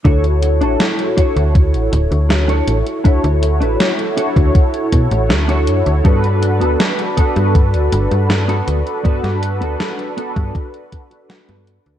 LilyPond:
<<
  \new Staff \with { instrumentName = "Analog polysynth" } { \time 4/4 \key d \major \tempo 4 = 80 <e' fis' a' cis''>4. <e' fis' a' cis''>2~ <e' fis' a' cis''>8 | <e' fis' a' cis''>4. <e' fis' a' cis''>2~ <e' fis' a' cis''>8 | <d' fis' a' b'>4. <d' fis' a' b'>2~ <d' fis' a' b'>8 | <d' fis' a' b'>4. <d' fis' a' b'>2~ <d' fis' a' b'>8 | }
  \new Staff \with { instrumentName = "Clean electric guitar" } { \time 4/4 \key d \major << { r1 | r1 | r1 | r2. fis''8 d''8 | } \\ { <d' fis' cis''>16 r8 <d' fis' a'>16 r8 <d' fis' cis''>8 r4 r16 <d' fis' cis''>16 r8 | <d' fis' e''>16 r8 <d' fis' b'>16 r8 <d' fis' cis''>8 r4 r16 <d' fis' cis''>16 r8 | <b fis' a'>16 r8 <b fis' a'>16 r8 <b fis' a'>8 r4 r16 <b fis' a'>16 r8 | <b fis' b'>16 r8 <b fis' a'>16 r8 <b fis' a'>8 r4 r16 <b fis' b'>16 r8 | } >> }
  \new Staff \with { instrumentName = "FM bass" } { \clef bass \time 4/4 \key d \major d,8. a,,16 r8. d,8 a,,16 d,,16 d,8. a,,16 r16 | d,16 d,8 a,,16 r8. d,16 r8 b,16 a,,16 d,8 fis,16 d,16 | g,8. d,16 r8. g,8 d,16 g,,16 g,8. d,16 r16 | g,16 g,8 d,16 r8. g,16 r4 r16 g,8 d,16 | }
  \new DrumStaff \with { instrumentName = "Drums" } \drummode { \time 4/4 <hh bd>16 hh16 hh16 hh16 <hh sn>16 hh16 <hh bd>16 hh16 <hh bd>16 hh16 hh16 hh16 <hh sn>16 hh16 hh16 hh16 | <hh bd>16 hh16 hh16 hh16 <hh sn>16 hh16 hh16 <hh bd>16 <hh bd>16 hh16 <hh bd>16 hh16 <hh sn>16 hh16 hh16 hh16 | <hh bd>16 hh16 hh16 hh16 <hh sn>16 hh16 <hh bd>16 hh16 <hh bd>16 hh16 hh16 hh16 <hh sn>16 hh16 hh16 hh16 | <hh bd>16 <hh sn>16 hh16 hh16 <hh sn>16 hh16 hh16 <hh bd>16 <hh bd>16 hh16 <hh bd>16 hh16 <hh sn>16 hh16 hh16 hh16 | }
>>